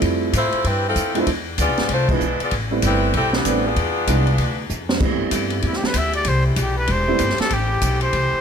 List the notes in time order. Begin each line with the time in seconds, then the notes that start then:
Already playing: F3 G3 A3 C4 E4
0.02 F2, kick, ride
0.33 A2 A3 E4 F4 C5, kick, hi-hat pedal, ride
0.52 muted upright bass stroke, ride
0.64 G2 G3 C4 E4 B4, kick, ride
0.88 F3 C4 E4 A4
0.96 F2, kick, hi-hat pedal, ride
1.15 F3 G#3 A3 B3 D4 E4 F4 C5, ride
1.19 E4
1.27 E2, kick, ride
1.58 D2 B3 F4 G#4 D5, kick, hi-hat pedal, ride
1.68 B1
1.77 G#1, snare, ride
1.89 C2 A3 D4 F4 C5, kick, ride
2.09 F3 G#3 B3 D4 E4 F4 B4, kick, crash
2.20 B1, hi-hat pedal
2.40 B3 F4 G#4 D5, muted upright bass stroke, ride
2.51 A1, kick, ride
2.70 G3 A3 B3 C4 E4
2.82 G1 G3 C4 E4 B4, kick, hi-hat pedal, ride
3.14 B1 G3 C4 E4 A4, kick, ride
3.33 E3 B3 C4 G4, snare
3.45 A1 G3 A3 B3 C4 D4, kick, hi-hat pedal, ride
3.66 B3 D4 F4 G#4
3.76 E2, kick, ride
4.07 C2 F3 G#3 B3 D4 E4, kick, hi-hat pedal, ride
4.27 ride
4.38 D2, kick, ride
4.69 F2, hi-hat pedal
4.89 snare
5.00 A2 E3 G3 A3 B3 C4 E4 G4, kick, crash
5.11 G2
5.22 E2
5.31 G2, kick, hi-hat pedal, ride
5.50 ride
5.62 E2, kick, ride
5.67 E4
5.73 G4, snare
5.83 B4, muted upright bass stroke, snare
5.94 D2 E5, kick, hi-hat pedal, ride
6.13 D5, ride
6.24 C2 C5, kick, ride
6.46 E4
6.56 B1, kick, hi-hat pedal, ride
6.61 G4
6.78 B4
6.87 E1, kick, ride
6.92 C5
7.07 G3 A3 B3 C4 E4
7.19 G1, kick, hi-hat pedal, ride
7.30 snare
7.38 A4, muted upright bass stroke, snare, ride
7.50 A1 C4 G4, kick, ride
7.81 B1, kick, hi-hat pedal, ride
8.01 C5, ride
8.13 C2, kick, ride
8.32 muted upright bass stroke